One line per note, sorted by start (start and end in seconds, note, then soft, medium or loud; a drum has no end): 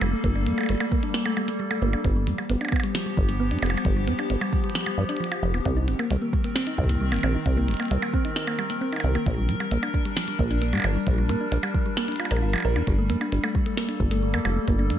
0.00 0.15 F1 medium
0.00 2.01 G3 medium
0.00 0.11 G3 medium
0.00 2.01 A#3 medium
0.00 2.01 A4 medium
0.00 percussion blips medium
0.13 0.24 A3 medium
0.24 0.48 G1 loud
0.24 0.34 A#3 loud
0.24 kick loud
0.24 closed hi-hat medium
0.36 0.41 D4 medium
0.47 0.54 G2 medium
0.47 0.56 A#3 medium
0.47 closed hi-hat medium
0.47 cabasa medium
0.58 0.68 A3 medium
0.58 percussion blips medium
0.61 percussion blips soft
0.63 percussion blips soft
0.66 closed hi-hat loud
0.66 percussion blips soft
0.69 0.76 G1 medium
0.69 0.79 G3 medium
0.69 percussion blips soft
0.72 percussion blips soft
0.75 percussion blips soft
0.78 percussion blips soft
0.80 0.90 A3 medium
0.80 percussion blips medium
0.92 1.02 A#3 loud
0.92 kick loud
1.03 1.13 D4 medium
1.03 closed hi-hat medium
1.14 1.24 A#3 medium
1.14 snare loud
1.26 1.35 A3 loud
1.26 closed hi-hat medium
1.26 percussion blips medium
1.37 1.48 G3 medium
1.37 percussion blips medium
1.48 1.54 A3 medium
1.48 closed hi-hat loud
1.60 1.69 G3 medium
1.71 1.81 A3 medium
1.71 closed hi-hat medium
1.71 percussion blips medium
1.82 1.96 G1 loud
1.82 1.92 A#3 loud
1.93 1.99 D4 medium
1.93 percussion blips soft
2.05 2.29 G1 loud
2.05 5.62 F3 medium
2.05 5.62 B3 medium
2.05 2.14 B3 medium
2.05 5.62 G4 medium
2.05 kick loud
2.05 closed hi-hat medium
2.16 2.26 G3 medium
2.27 2.34 G2 medium
2.27 2.37 F3 medium
2.27 closed hi-hat medium
2.27 cabasa medium
2.38 2.48 G3 medium
2.38 percussion blips soft
2.50 2.57 G1 medium
2.50 2.59 B3 loud
2.50 closed hi-hat loud
2.61 2.71 D4 medium
2.61 percussion blips soft
2.65 percussion blips soft
2.68 percussion blips soft
2.72 2.82 B3 medium
2.72 kick loud
2.72 percussion blips medium
2.76 percussion blips medium
2.80 2.93 G3 loud
2.80 closed hi-hat medium
2.80 cabasa medium
2.80 percussion blips medium
2.95 3.06 F3 medium
2.95 snare loud
3.06 3.12 G3 medium
3.17 3.53 G1 loud
3.17 3.27 F3 medium
3.17 kick loud
3.29 3.39 G3 medium
3.40 3.50 B3 loud
3.51 3.58 G2 medium
3.51 3.57 D4 medium
3.51 closed hi-hat soft
3.59 3.76 F1 medium
3.59 3.72 B3 medium
3.59 closed hi-hat soft
3.59 percussion blips medium
3.66 closed hi-hat soft
3.66 percussion blips medium
3.74 3.83 G3 medium
3.74 percussion blips soft
3.85 4.09 G1 loud
3.85 3.95 F3 medium
3.85 kick loud
3.85 closed hi-hat medium
3.96 4.06 G3 medium
4.08 4.15 G2 loud
4.08 4.17 B3 loud
4.08 closed hi-hat medium
4.08 cabasa medium
4.19 4.29 D4 medium
4.19 percussion blips medium
4.30 4.37 G1 medium
4.30 4.40 B3 medium
4.30 closed hi-hat medium
4.41 4.51 G3 loud
4.41 percussion blips medium
4.53 4.63 F3 medium
4.53 kick loud
4.64 4.70 G3 medium
4.64 closed hi-hat soft
4.70 closed hi-hat soft
4.75 4.85 F3 medium
4.75 snare loud
4.75 closed hi-hat soft
4.81 closed hi-hat soft
4.86 4.97 G3 medium
4.86 closed hi-hat medium
4.86 percussion blips medium
4.98 5.05 G2 loud
4.98 5.09 F3 medium
5.09 5.15 D4 loud
5.09 closed hi-hat soft
5.17 5.31 F3 medium
5.17 closed hi-hat medium
5.24 closed hi-hat medium
5.32 5.42 F4 medium
5.32 closed hi-hat medium
5.32 percussion blips medium
5.43 5.56 F1 loud
5.43 5.53 F3 medium
5.54 5.61 D1 medium
5.54 5.64 B3 medium
5.54 percussion blips soft
5.65 5.89 C2 loud
5.65 9.23 D#3 medium
5.65 5.75 C4 loud
5.65 9.23 C4 medium
5.65 12.83 A#4 medium
5.65 kick loud
5.65 closed hi-hat soft
5.77 5.86 D#4 medium
5.88 5.95 G1 loud
5.88 5.98 C4 medium
5.88 closed hi-hat medium
5.88 cabasa medium
5.99 6.09 A#3 loud
5.99 percussion blips medium
6.11 6.18 C2 medium
6.11 6.21 G3 medium
6.11 closed hi-hat medium
6.22 6.28 A#3 medium
6.33 6.43 G3 medium
6.33 kick loud
6.44 6.55 A#3 medium
6.44 closed hi-hat medium
6.44 cabasa medium
6.56 6.65 C4 loud
6.56 snare loud
6.67 6.73 D#4 medium
6.67 closed hi-hat medium
6.78 7.14 C2 loud
6.78 6.89 D#4 medium
6.78 kick loud
6.84 kick medium
6.89 6.99 A#3 medium
6.89 kick medium
6.89 closed hi-hat medium
6.95 kick medium
7.01 7.11 G3 medium
7.12 7.19 G1 loud
7.12 7.22 A#3 medium
7.12 closed hi-hat soft
7.12 percussion blips medium
7.14 closed hi-hat soft
7.17 closed hi-hat soft
7.19 closed hi-hat soft
7.23 7.37 A#1 medium
7.23 7.33 C4 loud
7.23 percussion blips medium
7.35 7.44 D#4 medium
7.46 7.70 C2 loud
7.46 7.56 C4 medium
7.46 kick loud
7.46 closed hi-hat medium
7.57 7.67 A#3 loud
7.68 7.75 G1 loud
7.68 7.79 G3 medium
7.68 closed hi-hat medium
7.68 cabasa medium
7.71 closed hi-hat medium
7.74 closed hi-hat soft
7.77 7.86 A#3 medium
7.77 closed hi-hat soft
7.80 closed hi-hat soft
7.80 percussion blips medium
7.83 closed hi-hat soft
7.85 closed hi-hat soft
7.88 7.98 C2 medium
7.88 8.01 G3 medium
7.88 closed hi-hat soft
7.91 closed hi-hat medium
8.02 8.13 A#3 medium
8.02 percussion blips medium
8.14 8.23 C4 loud
8.14 kick loud
8.25 8.31 D#4 medium
8.25 closed hi-hat medium
8.36 8.47 D#4 medium
8.36 snare loud
8.47 8.57 A#3 medium
8.47 closed hi-hat medium
8.47 percussion blips medium
8.59 8.68 G3 medium
8.59 percussion blips medium
8.70 8.80 A#3 medium
8.70 closed hi-hat medium
8.81 8.91 C4 loud
8.93 9.02 D#4 medium
8.93 closed hi-hat medium
8.93 percussion blips soft
8.96 percussion blips soft
9.00 9.18 C2 loud
9.00 9.14 C4 medium
9.00 percussion blips medium
9.15 9.25 A#3 loud
9.15 percussion blips soft
9.26 9.50 A#1 loud
9.26 9.37 F3 medium
9.26 14.99 G3 medium
9.26 12.84 D4 medium
9.26 kick loud
9.26 closed hi-hat medium
9.38 9.43 G3 medium
9.49 9.56 A#2 loud
9.49 9.59 F3 medium
9.49 closed hi-hat medium
9.49 cabasa medium
9.60 9.71 G3 medium
9.60 percussion blips medium
9.71 9.78 A#1 medium
9.71 9.81 A#3 loud
9.71 closed hi-hat medium
9.83 9.89 D4 medium
9.83 percussion blips medium
9.94 10.05 D4 medium
9.94 kick loud
10.05 10.15 G3 medium
10.05 closed hi-hat medium
10.05 cabasa medium
10.08 cabasa soft
10.11 cabasa soft
10.14 10.26 F3 medium
10.14 snare loud
10.14 cabasa soft
10.28 10.38 G3 medium
10.28 closed hi-hat medium
10.39 10.75 A#1 loud
10.39 10.49 A#3 loud
10.39 kick loud
10.51 10.60 D4 medium
10.62 10.71 A#3 medium
10.62 closed hi-hat medium
10.73 10.80 A#2 medium
10.73 10.83 G3 loud
10.73 closed hi-hat soft
10.73 percussion blips soft
10.75 percussion blips soft
10.78 percussion blips medium
10.80 percussion blips medium
10.82 percussion blips medium
10.84 10.98 G1 medium
10.84 10.95 F3 medium
10.84 percussion blips medium
10.96 11.01 G3 medium
11.07 11.31 A#1 loud
11.07 11.17 F3 medium
11.07 kick loud
11.07 closed hi-hat medium
11.18 11.29 G3 medium
11.29 11.36 A#2 loud
11.29 11.39 A#3 loud
11.29 closed hi-hat medium
11.29 percussion blips medium
11.29 cabasa medium
11.41 11.47 D4 medium
11.52 11.59 A#1 medium
11.52 11.63 D4 medium
11.52 closed hi-hat loud
11.63 11.73 G3 medium
11.63 percussion blips medium
11.75 11.84 F3 medium
11.75 kick loud
11.86 11.95 G3 medium
11.97 12.07 A#3 loud
11.97 snare loud
12.08 12.18 D4 medium
12.08 closed hi-hat soft
12.12 closed hi-hat soft
12.16 12.29 F4 loud
12.16 closed hi-hat medium
12.16 percussion blips medium
12.25 percussion blips medium
12.31 12.44 A#1 loud
12.31 12.41 A#4 loud
12.31 closed hi-hat medium
12.31 percussion blips soft
12.37 percussion blips soft
12.42 12.56 G1 medium
12.42 12.52 F4 medium
12.53 12.64 F3 medium
12.53 closed hi-hat medium
12.53 percussion blips medium
12.56 percussion blips medium
12.58 percussion blips medium
12.60 percussion blips soft
12.62 12.78 A#1 medium
12.62 12.71 A#4 loud
12.62 percussion blips soft
12.76 12.83 F2 loud
12.76 12.87 D4 medium
12.76 percussion blips soft
12.87 13.11 G1 loud
12.87 12.97 G3 medium
12.87 14.99 A#3 medium
12.87 14.99 A4 medium
12.87 kick loud
12.87 closed hi-hat medium
12.99 13.09 A3 medium
13.10 13.17 G2 loud
13.10 13.20 A#3 loud
13.10 closed hi-hat medium
13.10 cabasa medium
13.21 13.27 D4 medium
13.21 percussion blips medium
13.32 13.39 G1 medium
13.32 13.43 D4 medium
13.32 closed hi-hat loud
13.44 13.53 A3 medium
13.44 percussion blips medium
13.55 13.65 G3 medium
13.55 kick loud
13.66 13.76 A3 medium
13.66 closed hi-hat medium
13.66 cabasa medium
13.77 13.87 A#3 loud
13.77 snare loud
13.89 13.98 D4 medium
13.89 closed hi-hat medium
14.00 14.36 G1 loud
14.00 14.10 A#3 medium
14.00 kick loud
14.11 14.21 A3 loud
14.11 closed hi-hat loud
14.22 14.33 G3 medium
14.34 14.41 G2 medium
14.34 14.44 A#3 loud
14.34 closed hi-hat medium
14.34 percussion blips medium
14.45 14.59 F1 medium
14.45 14.55 G3 medium
14.45 percussion blips medium
14.56 14.67 A3 medium
14.68 14.92 G1 loud
14.68 14.77 A#3 loud
14.68 kick loud
14.68 closed hi-hat medium
14.79 14.85 D4 medium
14.90 14.97 G2 loud
14.90 14.99 D4 medium
14.90 closed hi-hat medium
14.90 cabasa medium